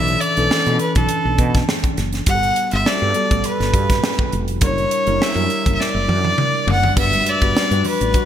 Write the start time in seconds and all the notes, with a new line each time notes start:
Already playing: B1 E3 C#4 D4 A4 E5
0.08 closed hi-hat
0.20 D5, closed hi-hat
0.37 B1 E3 C#4 D4 A4, closed hi-hat
0.51 snare
0.66 B2 E3 C#4 D4 A4, closed hi-hat
0.79 B4, closed hi-hat
0.95 B1 A4, kick, closed hi-hat
1.09 closed hi-hat
1.25 B1
1.38 B2, kick, closed hi-hat
1.54 kick, snare, closed hi-hat
1.69 snare
1.84 kick, closed hi-hat
1.97 F#1, snare, closed hi-hat
2.13 snare, closed hi-hat
2.26 G1 G3 B3 F#4 G4 F#5, kick, closed hi-hat
2.35 A4
2.43 closed hi-hat
2.56 closed hi-hat
2.71 G1 E5, closed hi-hat
2.85 G3 B3 F#4 A4 D5, snare
3.02 G2
3.14 G3 B3 F#4 A4, closed hi-hat
3.31 A1, kick, closed hi-hat
3.44 B4, closed hi-hat
3.60 G1, snare, closed hi-hat
3.74 G2, kick, closed hi-hat
3.90 kick, snare, closed hi-hat
4.04 snare
4.19 kick
4.33 F1, closed hi-hat
4.48 closed hi-hat
4.61 F#1 G3 D4 E4 A#4 C#5, kick, closed hi-hat
4.78 closed hi-hat
4.91 closed hi-hat
5.07 F#1 G3 D4 E4 A#4, closed hi-hat
5.20 E5, muted fretless electric bass stroke, snare
5.35 F#2 G3 D4 E4 A#4, closed hi-hat
5.50 closed hi-hat
5.66 F#1, kick, closed hi-hat
5.75 E5
5.80 D5, snare
5.95 F#1
6.08 F#2, high tom
6.25 high tom
6.38 mid tom
6.67 F#1 F#5, floor tom
6.83 floor tom
6.96 G1 G3 D4 F#4 B4 E5, kick, crash, muted conga
7.12 closed hi-hat, muted conga, high conga
7.24 E5, closed hi-hat
7.29 D5
7.41 G1 G3 D4 F#4 B4, kick, closed hi-hat
7.55 snare, muted conga
7.71 G2 G3 D4 F#4 B4, closed hi-hat, muted conga
7.84 B4, open hi-hat, low conga
8.01 A1, closed hi-hat
8.13 G3 D4 F#4 B4, kick, closed hi-hat, low conga